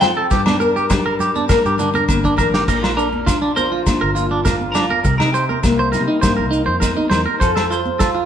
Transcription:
Already playing: steel-string acoustic guitar C4 F4 A4
0.01 steel-string acoustic guitar F3, clean electric guitar C4 G5, snare, low conga, low agogo, maracas
0.17 clean electric guitar A4
0.31 steel-string acoustic guitar G2 D4, fingered electric bass G2, clean electric guitar G4, kick, snare, maracas
0.46 clean electric guitar D4, snare, high conga, low agogo
0.60 clean electric guitar A#4, steel-string acoustic guitar A#4, high conga, maracas
0.76 clean electric guitar G4, maracas
0.90 steel-string acoustic guitar G3 D4, fingered electric bass G3, kick, snare, low conga, low agogo, maracas
1.06 clean electric guitar A#4
1.19 fingered electric bass G2, clean electric guitar G4, low conga, maracas
1.35 clean electric guitar D4, high conga, maracas
1.49 fingered electric bass A#2, clean electric guitar A#4, steel-string acoustic guitar A#4, kick, snare, low agogo, maracas
1.65 fingered electric bass G2, clean electric guitar G4, maracas
1.78 steel-string acoustic guitar D3 D4, clean electric guitar D4, low conga, maracas
1.94 clean electric guitar A#4, high conga, maracas
2.08 fingered electric bass G1, steel-string acoustic guitar A#3, kick, high conga, low agogo, maracas
2.24 clean electric guitar D4, kick, maracas
2.37 fingered electric bass A1, clean electric guitar A#4, steel-string acoustic guitar A#4, kick, low conga, low agogo, maracas
2.54 clean electric guitar G4, snare, maracas
2.68 fingered electric bass A#1, steel-string acoustic guitar A#2, clean electric guitar A#4, kick, snare, crash, maracas
2.83 clean electric guitar F4, snare, low agogo
2.97 clean electric guitar D4 A#4, maracas
3.13 high conga
3.27 steel-string acoustic guitar D4, clean electric guitar F4, kick, snare, low agogo, maracas
3.42 clean electric guitar D4
3.56 steel-string acoustic guitar F3 F4, clean electric guitar A#4 C5, high conga, maracas
3.72 clean electric guitar F4
3.86 fingered electric bass A#2, steel-string acoustic guitar D4, kick, snare, low agogo, maracas
4.01 fingered electric bass G1, clean electric guitar A#4
4.15 steel-string acoustic guitar A#2, clean electric guitar F4, maracas
4.31 clean electric guitar D4
4.45 steel-string acoustic guitar F4, clean electric guitar A#4, kick, snare, high conga, low agogo, maracas
4.61 high conga
4.72 clean electric guitar D4 A#4, steel-string acoustic guitar F4, snare, low conga, low agogo, maracas
4.90 clean electric guitar A#4, high conga
5.04 fingered electric bass C2, steel-string acoustic guitar C3, clean electric guitar A#4, kick, maracas
5.18 fingered electric bass C3, clean electric guitar D#4 A#4, snare, low agogo
5.32 clean electric guitar G4 C5, maracas
5.49 clean electric guitar A#4, high conga
5.63 fingered electric bass C2, steel-string acoustic guitar A#3, kick, snare, low agogo, maracas
5.79 clean electric guitar C5
5.92 fingered electric bass C3, steel-string acoustic guitar G3 D#4, clean electric guitar A#4, snare, low conga, maracas
6.08 clean electric guitar D#4
6.21 fingered electric bass G2, steel-string acoustic guitar A#3, clean electric guitar C5, kick, snare, low agogo, maracas
6.37 fingered electric bass C2, clean electric guitar A#4
6.51 clean electric guitar D#4, maracas
6.66 fingered electric bass F2, clean electric guitar C5
6.80 steel-string acoustic guitar D#4, clean electric guitar A#4, kick, snare, high conga, low agogo, maracas
6.97 clean electric guitar D#4, high conga
7.10 fingered electric bass E2, steel-string acoustic guitar A#4, clean electric guitar C5, snare, low conga, low agogo, maracas
7.26 clean electric guitar A#4, high conga
7.40 fingered electric bass F2, steel-string acoustic guitar F3, clean electric guitar A4 C5, kick, snare, maracas
7.55 clean electric guitar A4, snare, low agogo
7.70 clean electric guitar F4 C5, maracas
7.85 high conga
7.99 steel-string acoustic guitar F4, clean electric guitar A4, kick, snare, low agogo, maracas
8.15 clean electric guitar F4

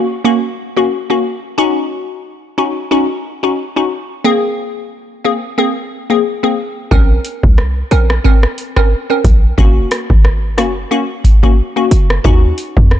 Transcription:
0.25 synth pluck A#3 C#4 F#4
0.77 synth pluck A#3 C#4 F#4
1.10 synth pluck A#3 C#4 F#4
1.58 synth pluck C#4 D#4 F#4
2.58 synth pluck C#4 D#4 F#4
2.91 synth pluck C#4 D#4 F#4
3.43 synth pluck C#4 D#4 F#4
3.76 synth pluck C#4 D#4 F#4
4.25 synth pluck A#3 C4 G#4
5.25 synth pluck A#3 C4 G#4
5.58 synth pluck A#3 C4 G#4
6.10 synth pluck A#3 C4 G#4
6.43 synth pluck A#3 C4 G#4
6.91 808-style bass A#1, synth pluck C4 C#4 A#4, kick
7.25 closed hi-hat
7.43 808-style bass C2, kick
7.58 cross-stick
7.91 808-style bass A#1, synth pluck C4 C#4 A#4, closed hi-hat
8.10 cross-stick
8.24 synth pluck C4 C#4 A#4, kick
8.43 cross-stick
8.58 closed hi-hat
8.76 synth pluck C4 C#4 A#4, kick, cross-stick
9.10 synth pluck C4 C#4 A#4
9.24 808-style bass A#1, kick, closed hi-hat
9.58 808-style bass F#1, synth pluck A#3 C#4 F#4, kick
9.91 cross-stick, closed hi-hat
10.10 808-style bass G#1, kick
10.25 cross-stick
10.58 808-style bass F#1, synth pluck A#3 C#4 F#4, cross-stick, closed hi-hat
10.91 synth pluck A#3 C#4 F#4
11.24 kick, closed hi-hat
11.43 synth pluck A#3 C#4 F#4, kick
11.76 synth pluck A#3 C#4 F#4
11.91 808-style bass F#1, closed hi-hat
12.10 cross-stick
12.24 808-style bass D#2, synth pluck C#4 D#4 F#4, kick
12.58 closed hi-hat
12.77 808-style bass F2, kick
12.91 cross-stick

